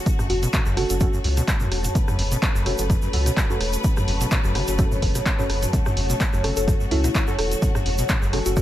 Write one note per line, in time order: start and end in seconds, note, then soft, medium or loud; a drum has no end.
0.00 8.62 C#3 medium
0.00 8.62 F#3 medium
0.00 8.62 A3 medium
0.00 1.94 F#4 medium
0.00 8.62 F#4 medium
0.00 8.62 C#5 medium
0.00 8.62 A5 medium
0.06 kick loud
0.06 closed hi-hat medium
0.06 shaker medium
0.19 0.28 F#2 medium
0.19 cross-stick medium
0.19 mid tom loud
0.19 shaker soft
0.30 0.46 F#1 loud
0.30 0.34 F#2 medium
0.30 0.75 F#4 medium
0.30 open hi-hat loud
0.43 0.49 B2 loud
0.43 closed hi-hat medium
0.43 shaker medium
0.53 0.61 B2 medium
0.53 kick loud
0.53 clap loud
0.53 closed hi-hat medium
0.53 shaker medium
0.66 0.73 F#1 medium
0.66 0.79 F#2 loud
0.66 cross-stick soft
0.66 shaker soft
0.77 0.85 F#1 medium
0.77 0.84 C#3 medium
0.77 0.87 C#4 medium
0.77 0.87 F#4 medium
0.77 1.44 F#4 medium
0.77 0.87 A4 medium
0.77 cross-stick medium
0.77 open hi-hat loud
0.90 1.05 F#1 medium
0.90 0.96 F#1 medium
0.90 0.98 C#4 medium
0.90 0.98 F#4 medium
0.90 0.98 A4 medium
0.90 closed hi-hat medium
0.90 shaker medium
1.00 1.08 F#2 loud
1.00 1.10 C#4 medium
1.00 1.10 F#4 medium
1.00 1.10 A4 loud
1.00 kick loud
1.00 cross-stick medium
1.00 closed hi-hat medium
1.00 shaker medium
1.14 1.20 F#2 loud
1.14 shaker soft
1.24 1.40 C#2 loud
1.24 1.29 F#2 medium
1.24 open hi-hat loud
1.37 1.43 B2 loud
1.37 cross-stick soft
1.37 closed hi-hat medium
1.37 shaker medium
1.48 kick loud
1.48 clap loud
1.48 closed hi-hat soft
1.48 shaker medium
1.60 1.70 F#2 medium
1.60 mid tom medium
1.60 shaker soft
1.72 1.88 E1 loud
1.72 cross-stick medium
1.72 open hi-hat loud
1.84 closed hi-hat medium
1.84 mid tom medium
1.84 shaker medium
1.95 5.72 B4 medium
1.95 kick loud
1.95 closed hi-hat medium
1.95 shaker medium
2.08 2.17 F#2 medium
2.08 cross-stick medium
2.08 mid tom loud
2.08 shaker soft
2.19 2.35 F#1 loud
2.19 2.23 F#2 medium
2.19 open hi-hat loud
2.32 2.38 B2 loud
2.32 closed hi-hat medium
2.32 shaker medium
2.42 2.50 B2 medium
2.42 kick loud
2.42 clap loud
2.42 closed hi-hat medium
2.42 shaker medium
2.55 2.62 F#1 medium
2.55 2.68 F#2 loud
2.55 cross-stick soft
2.55 shaker soft
2.66 2.74 F#1 medium
2.66 2.73 C#3 medium
2.66 2.76 C#4 medium
2.66 2.76 F#4 medium
2.66 2.76 A4 loud
2.66 cross-stick medium
2.66 open hi-hat loud
2.78 2.94 F#1 loud
2.78 2.85 F#1 medium
2.78 2.87 C#4 medium
2.78 2.87 F#4 medium
2.78 2.87 A4 medium
2.78 closed hi-hat medium
2.78 shaker medium
2.90 2.97 F#2 loud
2.90 kick loud
2.90 cross-stick medium
2.90 closed hi-hat medium
2.90 shaker medium
3.02 3.08 F#2 loud
3.02 shaker soft
3.13 3.29 C#2 loud
3.13 3.18 F#2 medium
3.13 3.23 C#4 medium
3.13 3.23 F#4 medium
3.13 3.23 A4 loud
3.13 open hi-hat loud
3.26 3.32 B2 loud
3.26 cross-stick soft
3.26 closed hi-hat medium
3.26 shaker medium
3.37 kick loud
3.37 clap loud
3.37 closed hi-hat soft
3.37 shaker medium
3.50 3.59 F#2 medium
3.50 3.58 C#4 medium
3.50 3.58 F#4 medium
3.50 3.58 A4 loud
3.50 shaker soft
3.61 3.77 E1 loud
3.61 cross-stick medium
3.61 open hi-hat loud
3.73 closed hi-hat medium
3.73 shaker medium
3.84 kick loud
3.84 closed hi-hat soft
3.84 shaker medium
3.97 4.06 F#2 medium
3.97 cross-stick medium
3.97 mid tom loud
3.97 shaker soft
4.08 4.24 F#1 loud
4.08 4.12 F#2 medium
4.08 open hi-hat loud
4.21 4.27 B2 loud
4.21 closed hi-hat medium
4.21 shaker medium
4.31 4.39 B2 medium
4.31 kick loud
4.31 clap loud
4.31 closed hi-hat medium
4.31 shaker medium
4.44 4.51 F#1 medium
4.44 4.57 F#2 loud
4.44 cross-stick soft
4.44 shaker soft
4.55 4.63 F#1 medium
4.55 4.62 C#3 medium
4.55 4.65 C#4 medium
4.55 4.65 F#4 medium
4.55 4.65 A4 medium
4.55 cross-stick medium
4.55 open hi-hat loud
4.68 4.83 F#1 medium
4.68 4.74 F#1 medium
4.68 4.76 C#4 medium
4.68 4.76 F#4 medium
4.68 4.76 A4 medium
4.68 closed hi-hat medium
4.68 shaker medium
4.79 4.86 F#2 loud
4.79 4.88 C#4 medium
4.79 4.88 F#4 medium
4.79 4.88 A4 loud
4.79 kick loud
4.79 cross-stick medium
4.79 closed hi-hat medium
4.79 shaker medium
4.92 4.97 F#2 loud
4.92 mid tom medium
4.92 shaker soft
5.02 5.18 F#1 medium
5.02 5.07 F#2 medium
5.02 kick medium
5.02 open hi-hat loud
5.15 5.21 B2 loud
5.15 cross-stick soft
5.15 closed hi-hat medium
5.15 shaker medium
5.26 kick loud
5.26 clap loud
5.26 closed hi-hat soft
5.26 shaker medium
5.39 5.48 F#2 medium
5.39 5.47 C#4 medium
5.39 5.47 F#4 medium
5.39 5.47 A4 loud
5.39 mid tom medium
5.39 shaker soft
5.50 5.66 F#1 loud
5.50 cross-stick medium
5.50 open hi-hat loud
5.63 closed hi-hat medium
5.63 mid tom medium
5.63 shaker medium
5.73 5.80 F#2 medium
5.73 8.62 F#4 medium
5.73 kick loud
5.73 closed hi-hat medium
5.73 shaker medium
5.86 5.95 F#2 medium
5.86 cross-stick medium
5.86 mid tom loud
5.86 shaker soft
5.97 6.13 F#1 loud
5.97 6.01 F#2 medium
5.97 open hi-hat loud
6.10 6.16 B2 loud
6.10 closed hi-hat medium
6.10 shaker medium
6.20 6.27 B2 medium
6.20 kick loud
6.20 clap loud
6.20 closed hi-hat medium
6.20 shaker medium
6.33 6.40 F#1 medium
6.33 6.46 F#2 loud
6.33 cross-stick soft
6.33 shaker soft
6.44 6.52 F#1 medium
6.44 6.51 C#3 medium
6.44 6.54 C#4 medium
6.44 6.54 F#4 medium
6.44 6.52 A4 medium
6.44 6.54 A4 loud
6.44 cross-stick medium
6.44 open hi-hat loud
6.57 6.71 F#1 loud
6.57 6.63 F#1 medium
6.57 6.65 C#4 medium
6.57 6.65 F#4 medium
6.57 6.64 A4 medium
6.57 6.65 A4 medium
6.57 closed hi-hat medium
6.57 shaker medium
6.68 6.75 F#2 loud
6.68 kick loud
6.68 cross-stick medium
6.68 closed hi-hat soft
6.68 shaker medium
6.80 6.86 F#2 loud
6.80 shaker soft
6.91 7.07 C#2 loud
6.91 6.96 F#2 medium
6.91 7.01 C#4 loud
6.91 7.00 E4 medium
6.91 7.01 F#4 medium
6.91 7.01 A4 loud
6.91 open hi-hat loud
7.04 7.10 B2 loud
7.04 7.11 E4 medium
7.04 cross-stick soft
7.04 closed hi-hat medium
7.04 shaker medium
7.15 kick loud
7.15 clap loud
7.15 closed hi-hat soft
7.15 shaker medium
7.27 7.37 F#2 medium
7.27 7.36 C#4 medium
7.27 7.36 F#4 medium
7.27 7.36 A4 loud
7.27 shaker soft
7.38 7.55 E1 loud
7.38 7.57 A4 medium
7.38 cross-stick medium
7.38 open hi-hat loud
7.51 closed hi-hat medium
7.51 shaker medium
7.62 7.69 F#2 medium
7.62 kick loud
7.62 closed hi-hat medium
7.62 shaker medium
7.75 7.84 F#2 medium
7.75 cross-stick medium
7.75 mid tom loud
7.75 shaker soft
7.86 8.02 F#1 loud
7.86 7.90 F#2 medium
7.86 open hi-hat loud
7.98 8.04 B2 loud
7.98 closed hi-hat medium
7.98 shaker medium
8.09 8.16 B2 medium
8.09 kick loud
8.09 clap loud
8.09 closed hi-hat medium
8.09 shaker medium
8.22 8.29 F#1 medium
8.22 8.34 F#2 loud
8.22 cross-stick soft
8.22 shaker soft
8.33 8.41 F#1 medium
8.33 8.40 C#3 medium
8.33 8.43 C#4 medium
8.33 8.43 F#4 medium
8.33 8.43 A4 medium
8.33 cross-stick medium
8.33 open hi-hat loud
8.46 8.61 F#1 medium
8.46 8.52 F#1 medium
8.46 8.54 C#4 medium
8.46 8.54 F#4 medium
8.46 8.53 F#4 medium
8.46 8.54 A4 medium
8.46 closed hi-hat medium
8.46 shaker medium
8.57 8.62 F#2 loud
8.57 8.62 C#4 medium
8.57 8.62 F#4 medium
8.57 8.62 A4 loud
8.57 kick loud
8.57 cross-stick medium
8.57 closed hi-hat medium
8.57 shaker medium